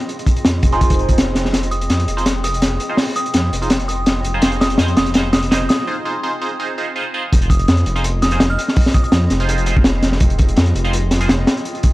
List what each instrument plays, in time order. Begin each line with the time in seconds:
0.00 closed hi-hat
0.09 closed hi-hat
0.19 closed hi-hat
0.26 kick, closed hi-hat
0.36 closed hi-hat
0.45 detuned saw bass F2, snare, closed hi-hat
0.63 detuned saw bass F1, kick, closed hi-hat
0.72 synth stab D#4 F4 G#4 C5, closed hi-hat
0.81 kick, closed hi-hat
0.90 kick, closed hi-hat
0.99 closed hi-hat
1.09 kick, closed hi-hat
1.18 snare, closed hi-hat
1.35 detuned saw bass F1, snare, closed hi-hat
1.45 snare
1.53 detuned saw bass F1, snare, closed hi-hat
1.63 closed hi-hat
1.71 synth bell D#6, closed hi-hat
1.81 closed hi-hat
1.90 detuned saw bass F2, snare, closed hi-hat
2.00 closed hi-hat
2.08 detuned saw bass F1, ambient pad C4 F4 G#4 D#5, closed hi-hat
2.17 synth stab D#4 F4 G#4 C5, closed hi-hat
2.26 snare, closed hi-hat
2.44 synth bell D#6, closed hi-hat
2.54 closed hi-hat
2.62 snare, closed hi-hat
2.80 closed hi-hat
2.89 synth stab D#4 F4 G#4 C5
2.97 snare, open hi-hat
3.16 synth bell D#6, closed hi-hat
3.26 closed hi-hat
3.34 detuned saw bass F2, snare, closed hi-hat
3.52 detuned saw bass F1, ambient pad C4 F4 G#4 D#5, closed hi-hat
3.62 synth stab D#4 F4 G#4 C5, closed hi-hat
3.70 snare, closed hi-hat
3.80 closed hi-hat
3.88 synth bell D#6, closed hi-hat
4.06 snare, closed hi-hat
4.24 detuned saw bass F1, closed hi-hat
4.34 synth stab D#4 F4 G#4 C5
4.42 detuned saw bass F1, synth stab D#4 F4 G#4 C5, snare, closed hi-hat
4.52 closed hi-hat
4.61 synth bell D#6, snare, closed hi-hat
4.70 closed hi-hat
4.78 detuned saw bass F2, synth stab D#4 F4 G#4 C5, snare, closed hi-hat
4.88 closed hi-hat
4.96 detuned saw bass F1, ambient pad C4 F4 G#4 D#5, synth bell D#6, snare, closed hi-hat
5.06 closed hi-hat
5.14 synth stab D#4 F4 G#4 C5, snare, closed hi-hat
5.33 synth bell D#6, snare, closed hi-hat
5.42 closed hi-hat
5.51 synth stab D#4 F4 G#4 C5, snare, closed hi-hat
5.69 synth bell D#6, snare, closed hi-hat
5.87 synth stab D#4 F4 G#4 C5
6.05 synth stab D#4 F4 G#4 C5
6.23 synth stab D#4 F4 G#4 C5
6.41 synth stab D#4 F4 G#4 C5
6.60 synth stab D#4 F4 G#4 C5
6.78 synth stab D#4 F4 G#4 C5
6.96 synth stab D#4 F4 G#4 C5
7.14 synth stab D#4 F4 G#4 C5
7.33 detuned saw bass F1, kick, closed hi-hat
7.42 closed hi-hat
7.50 synth bell D#6, kick, closed hi-hat
7.59 closed hi-hat
7.68 detuned saw bass F2, snare, closed hi-hat
7.77 closed hi-hat
7.86 detuned saw bass F1, ambient pad C4 F4 G#4 D#5, closed hi-hat
7.96 synth stab D#4 F4 G#4 C5, closed hi-hat
8.04 closed hi-hat
8.22 synth bell D#6, snare, closed hi-hat
8.31 synth stab D#4 F4 G#4 C5, closed hi-hat
8.40 snare, closed hi-hat
8.50 synth bell F6
8.58 synth bell F6, closed hi-hat
8.68 snare
8.76 kick, open hi-hat
8.86 snare
8.94 synth bell D#6, kick, closed hi-hat
9.04 synth bell D#6, closed hi-hat
9.12 detuned saw bass F2, snare, closed hi-hat
9.30 detuned saw bass F1, snare, closed hi-hat
9.40 synth stab D#4 F4 G#4 C5, closed hi-hat
9.49 closed hi-hat
9.58 closed hi-hat
9.66 synth stab D#4 F4 G#4 C5, closed hi-hat
9.77 kick
9.84 snare, closed hi-hat
10.03 detuned saw bass F1, snare, closed hi-hat
10.12 snare
10.20 detuned saw bass F1, kick, closed hi-hat
10.30 closed hi-hat
10.39 kick, closed hi-hat
10.49 closed hi-hat
10.57 detuned saw bass F2, snare, closed hi-hat
10.66 closed hi-hat
10.75 detuned saw bass F1, ambient pad C4 F4 G#4 D#5, closed hi-hat
10.84 synth stab D#4 F4 G#4 C5, closed hi-hat
10.93 closed hi-hat
11.11 snare, closed hi-hat
11.21 synth stab D#4 F4 G#4 C5, closed hi-hat
11.29 snare, closed hi-hat
11.47 snare, closed hi-hat
11.57 closed hi-hat
11.65 closed hi-hat
11.75 closed hi-hat
11.83 kick, closed hi-hat